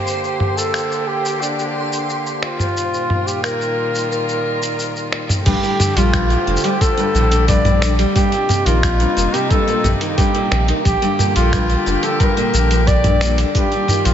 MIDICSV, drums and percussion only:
0, 0, Header, 1, 2, 480
1, 0, Start_track
1, 0, Key_signature, -2, "major"
1, 0, Tempo, 674157
1, 47, Time_signature, 4, 2, 24, 8
1, 10066, End_track
2, 0, Start_track
2, 0, Title_t, "Drums"
2, 51, Note_on_c, 9, 82, 47
2, 122, Note_off_c, 9, 82, 0
2, 170, Note_on_c, 9, 82, 29
2, 241, Note_off_c, 9, 82, 0
2, 286, Note_on_c, 9, 45, 64
2, 357, Note_off_c, 9, 45, 0
2, 411, Note_on_c, 9, 82, 60
2, 483, Note_off_c, 9, 82, 0
2, 527, Note_on_c, 9, 26, 65
2, 531, Note_on_c, 9, 82, 49
2, 598, Note_off_c, 9, 26, 0
2, 602, Note_off_c, 9, 82, 0
2, 652, Note_on_c, 9, 82, 29
2, 723, Note_off_c, 9, 82, 0
2, 892, Note_on_c, 9, 82, 56
2, 964, Note_off_c, 9, 82, 0
2, 1013, Note_on_c, 9, 82, 51
2, 1084, Note_off_c, 9, 82, 0
2, 1131, Note_on_c, 9, 82, 29
2, 1203, Note_off_c, 9, 82, 0
2, 1371, Note_on_c, 9, 82, 53
2, 1442, Note_off_c, 9, 82, 0
2, 1491, Note_on_c, 9, 82, 47
2, 1562, Note_off_c, 9, 82, 0
2, 1611, Note_on_c, 9, 82, 27
2, 1682, Note_off_c, 9, 82, 0
2, 1727, Note_on_c, 9, 26, 66
2, 1798, Note_off_c, 9, 26, 0
2, 1847, Note_on_c, 9, 45, 63
2, 1851, Note_on_c, 9, 82, 66
2, 1919, Note_off_c, 9, 45, 0
2, 1923, Note_off_c, 9, 82, 0
2, 1972, Note_on_c, 9, 82, 49
2, 2043, Note_off_c, 9, 82, 0
2, 2092, Note_on_c, 9, 82, 31
2, 2163, Note_off_c, 9, 82, 0
2, 2207, Note_on_c, 9, 45, 63
2, 2279, Note_off_c, 9, 45, 0
2, 2332, Note_on_c, 9, 82, 58
2, 2404, Note_off_c, 9, 82, 0
2, 2448, Note_on_c, 9, 26, 66
2, 2453, Note_on_c, 9, 82, 49
2, 2520, Note_off_c, 9, 26, 0
2, 2524, Note_off_c, 9, 82, 0
2, 2572, Note_on_c, 9, 82, 31
2, 2644, Note_off_c, 9, 82, 0
2, 2811, Note_on_c, 9, 82, 58
2, 2883, Note_off_c, 9, 82, 0
2, 2933, Note_on_c, 9, 82, 51
2, 3004, Note_off_c, 9, 82, 0
2, 3052, Note_on_c, 9, 82, 30
2, 3123, Note_off_c, 9, 82, 0
2, 3292, Note_on_c, 9, 82, 55
2, 3363, Note_off_c, 9, 82, 0
2, 3412, Note_on_c, 9, 82, 51
2, 3483, Note_off_c, 9, 82, 0
2, 3533, Note_on_c, 9, 82, 27
2, 3604, Note_off_c, 9, 82, 0
2, 3649, Note_on_c, 9, 26, 64
2, 3720, Note_off_c, 9, 26, 0
2, 3769, Note_on_c, 9, 45, 68
2, 3773, Note_on_c, 9, 82, 63
2, 3840, Note_off_c, 9, 45, 0
2, 3845, Note_off_c, 9, 82, 0
2, 3888, Note_on_c, 9, 36, 97
2, 3888, Note_on_c, 9, 42, 47
2, 3888, Note_on_c, 9, 49, 105
2, 3892, Note_on_c, 9, 82, 42
2, 3959, Note_off_c, 9, 42, 0
2, 3959, Note_off_c, 9, 49, 0
2, 3960, Note_off_c, 9, 36, 0
2, 3963, Note_off_c, 9, 82, 0
2, 4013, Note_on_c, 9, 82, 23
2, 4084, Note_off_c, 9, 82, 0
2, 4128, Note_on_c, 9, 45, 76
2, 4132, Note_on_c, 9, 82, 70
2, 4199, Note_off_c, 9, 45, 0
2, 4203, Note_off_c, 9, 82, 0
2, 4249, Note_on_c, 9, 42, 59
2, 4253, Note_on_c, 9, 82, 34
2, 4320, Note_off_c, 9, 42, 0
2, 4324, Note_off_c, 9, 82, 0
2, 4368, Note_on_c, 9, 26, 88
2, 4368, Note_on_c, 9, 42, 46
2, 4369, Note_on_c, 9, 36, 108
2, 4372, Note_on_c, 9, 82, 46
2, 4439, Note_off_c, 9, 26, 0
2, 4439, Note_off_c, 9, 42, 0
2, 4440, Note_off_c, 9, 36, 0
2, 4443, Note_off_c, 9, 82, 0
2, 4494, Note_on_c, 9, 82, 22
2, 4565, Note_off_c, 9, 82, 0
2, 4674, Note_on_c, 9, 82, 74
2, 4729, Note_on_c, 9, 42, 55
2, 4733, Note_off_c, 9, 82, 0
2, 4733, Note_on_c, 9, 82, 34
2, 4800, Note_off_c, 9, 42, 0
2, 4804, Note_off_c, 9, 82, 0
2, 4849, Note_on_c, 9, 36, 106
2, 4850, Note_on_c, 9, 42, 49
2, 4854, Note_on_c, 9, 82, 45
2, 4920, Note_off_c, 9, 36, 0
2, 4921, Note_off_c, 9, 42, 0
2, 4925, Note_off_c, 9, 82, 0
2, 4974, Note_on_c, 9, 82, 23
2, 5045, Note_off_c, 9, 82, 0
2, 5094, Note_on_c, 9, 82, 72
2, 5165, Note_off_c, 9, 82, 0
2, 5210, Note_on_c, 9, 42, 53
2, 5214, Note_on_c, 9, 82, 32
2, 5281, Note_off_c, 9, 42, 0
2, 5285, Note_off_c, 9, 82, 0
2, 5328, Note_on_c, 9, 36, 110
2, 5329, Note_on_c, 9, 42, 47
2, 5333, Note_on_c, 9, 82, 44
2, 5400, Note_off_c, 9, 36, 0
2, 5400, Note_off_c, 9, 42, 0
2, 5404, Note_off_c, 9, 82, 0
2, 5448, Note_on_c, 9, 45, 70
2, 5452, Note_on_c, 9, 82, 20
2, 5519, Note_off_c, 9, 45, 0
2, 5523, Note_off_c, 9, 82, 0
2, 5568, Note_on_c, 9, 26, 85
2, 5572, Note_on_c, 9, 82, 75
2, 5639, Note_off_c, 9, 26, 0
2, 5643, Note_off_c, 9, 82, 0
2, 5688, Note_on_c, 9, 42, 55
2, 5693, Note_on_c, 9, 82, 33
2, 5760, Note_off_c, 9, 42, 0
2, 5764, Note_off_c, 9, 82, 0
2, 5808, Note_on_c, 9, 36, 111
2, 5808, Note_on_c, 9, 42, 46
2, 5812, Note_on_c, 9, 82, 44
2, 5879, Note_off_c, 9, 36, 0
2, 5879, Note_off_c, 9, 42, 0
2, 5883, Note_off_c, 9, 82, 0
2, 5932, Note_on_c, 9, 82, 23
2, 6003, Note_off_c, 9, 82, 0
2, 6047, Note_on_c, 9, 45, 71
2, 6051, Note_on_c, 9, 82, 80
2, 6118, Note_off_c, 9, 45, 0
2, 6122, Note_off_c, 9, 82, 0
2, 6169, Note_on_c, 9, 42, 55
2, 6173, Note_on_c, 9, 82, 33
2, 6240, Note_off_c, 9, 42, 0
2, 6244, Note_off_c, 9, 82, 0
2, 6288, Note_on_c, 9, 36, 103
2, 6289, Note_on_c, 9, 26, 84
2, 6289, Note_on_c, 9, 42, 45
2, 6293, Note_on_c, 9, 82, 49
2, 6360, Note_off_c, 9, 26, 0
2, 6360, Note_off_c, 9, 36, 0
2, 6360, Note_off_c, 9, 42, 0
2, 6364, Note_off_c, 9, 82, 0
2, 6414, Note_on_c, 9, 82, 25
2, 6485, Note_off_c, 9, 82, 0
2, 6533, Note_on_c, 9, 82, 73
2, 6604, Note_off_c, 9, 82, 0
2, 6650, Note_on_c, 9, 42, 51
2, 6654, Note_on_c, 9, 82, 35
2, 6721, Note_off_c, 9, 42, 0
2, 6725, Note_off_c, 9, 82, 0
2, 6768, Note_on_c, 9, 36, 109
2, 6768, Note_on_c, 9, 42, 46
2, 6772, Note_on_c, 9, 82, 45
2, 6839, Note_off_c, 9, 36, 0
2, 6839, Note_off_c, 9, 42, 0
2, 6843, Note_off_c, 9, 82, 0
2, 6892, Note_on_c, 9, 82, 23
2, 6963, Note_off_c, 9, 82, 0
2, 7008, Note_on_c, 9, 45, 75
2, 7012, Note_on_c, 9, 82, 81
2, 7079, Note_off_c, 9, 45, 0
2, 7083, Note_off_c, 9, 82, 0
2, 7127, Note_on_c, 9, 42, 54
2, 7131, Note_on_c, 9, 82, 30
2, 7198, Note_off_c, 9, 42, 0
2, 7202, Note_off_c, 9, 82, 0
2, 7247, Note_on_c, 9, 42, 47
2, 7248, Note_on_c, 9, 36, 110
2, 7252, Note_on_c, 9, 82, 47
2, 7319, Note_off_c, 9, 36, 0
2, 7319, Note_off_c, 9, 42, 0
2, 7323, Note_off_c, 9, 82, 0
2, 7488, Note_on_c, 9, 26, 81
2, 7559, Note_off_c, 9, 26, 0
2, 7608, Note_on_c, 9, 42, 57
2, 7679, Note_off_c, 9, 42, 0
2, 7728, Note_on_c, 9, 36, 106
2, 7728, Note_on_c, 9, 42, 47
2, 7732, Note_on_c, 9, 82, 48
2, 7799, Note_off_c, 9, 36, 0
2, 7799, Note_off_c, 9, 42, 0
2, 7803, Note_off_c, 9, 82, 0
2, 7852, Note_on_c, 9, 82, 23
2, 7923, Note_off_c, 9, 82, 0
2, 7969, Note_on_c, 9, 45, 70
2, 7973, Note_on_c, 9, 82, 77
2, 8040, Note_off_c, 9, 45, 0
2, 8044, Note_off_c, 9, 82, 0
2, 8087, Note_on_c, 9, 42, 53
2, 8091, Note_on_c, 9, 82, 37
2, 8158, Note_off_c, 9, 42, 0
2, 8162, Note_off_c, 9, 82, 0
2, 8208, Note_on_c, 9, 26, 81
2, 8208, Note_on_c, 9, 36, 116
2, 8208, Note_on_c, 9, 42, 47
2, 8212, Note_on_c, 9, 82, 46
2, 8279, Note_off_c, 9, 26, 0
2, 8279, Note_off_c, 9, 36, 0
2, 8279, Note_off_c, 9, 42, 0
2, 8284, Note_off_c, 9, 82, 0
2, 8331, Note_on_c, 9, 82, 24
2, 8402, Note_off_c, 9, 82, 0
2, 8450, Note_on_c, 9, 82, 80
2, 8521, Note_off_c, 9, 82, 0
2, 8565, Note_on_c, 9, 42, 49
2, 8569, Note_on_c, 9, 82, 34
2, 8636, Note_off_c, 9, 42, 0
2, 8640, Note_off_c, 9, 82, 0
2, 8686, Note_on_c, 9, 42, 46
2, 8688, Note_on_c, 9, 36, 118
2, 8690, Note_on_c, 9, 82, 47
2, 8758, Note_off_c, 9, 42, 0
2, 8759, Note_off_c, 9, 36, 0
2, 8762, Note_off_c, 9, 82, 0
2, 8811, Note_on_c, 9, 82, 25
2, 8882, Note_off_c, 9, 82, 0
2, 8931, Note_on_c, 9, 82, 81
2, 9002, Note_off_c, 9, 82, 0
2, 9048, Note_on_c, 9, 42, 49
2, 9052, Note_on_c, 9, 82, 33
2, 9119, Note_off_c, 9, 42, 0
2, 9123, Note_off_c, 9, 82, 0
2, 9166, Note_on_c, 9, 42, 44
2, 9167, Note_on_c, 9, 36, 113
2, 9170, Note_on_c, 9, 82, 49
2, 9237, Note_off_c, 9, 42, 0
2, 9238, Note_off_c, 9, 36, 0
2, 9241, Note_off_c, 9, 82, 0
2, 9285, Note_on_c, 9, 45, 74
2, 9289, Note_on_c, 9, 82, 21
2, 9356, Note_off_c, 9, 45, 0
2, 9360, Note_off_c, 9, 82, 0
2, 9405, Note_on_c, 9, 26, 81
2, 9410, Note_on_c, 9, 82, 82
2, 9477, Note_off_c, 9, 26, 0
2, 9481, Note_off_c, 9, 82, 0
2, 9527, Note_on_c, 9, 42, 60
2, 9531, Note_on_c, 9, 82, 37
2, 9598, Note_off_c, 9, 42, 0
2, 9602, Note_off_c, 9, 82, 0
2, 9646, Note_on_c, 9, 42, 43
2, 9647, Note_on_c, 9, 36, 102
2, 9650, Note_on_c, 9, 82, 44
2, 9717, Note_off_c, 9, 42, 0
2, 9718, Note_off_c, 9, 36, 0
2, 9722, Note_off_c, 9, 82, 0
2, 9770, Note_on_c, 9, 82, 23
2, 9841, Note_off_c, 9, 82, 0
2, 9884, Note_on_c, 9, 45, 75
2, 9889, Note_on_c, 9, 82, 78
2, 9956, Note_off_c, 9, 45, 0
2, 9960, Note_off_c, 9, 82, 0
2, 10006, Note_on_c, 9, 42, 58
2, 10010, Note_on_c, 9, 82, 36
2, 10066, Note_off_c, 9, 42, 0
2, 10066, Note_off_c, 9, 82, 0
2, 10066, End_track
0, 0, End_of_file